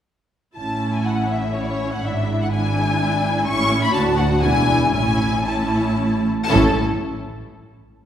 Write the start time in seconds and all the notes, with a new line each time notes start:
0.57 A1 A2 C#4 E4 A5
0.94 G#5
1.06 F#5
1.31 E5
1.55 C#4 E4 C#5
1.63 D5
1.70 C#5
1.92 F#5
2.03 G#1 G#2 D4 E4 E5
2.40 F#5
2.52 D4 E4 G#5
3.47 A1 A2 C#4 E4 C#6
3.83 B5
3.93 D2 D4 F#4 A5
4.17 F#5
4.42 E1 E2 D4 E4 G#5
4.93 A1 A2 C#4 E4 G#5
5.45 C#4 E4 A5
6.49 A1 A2 C#4 E4 A4 A5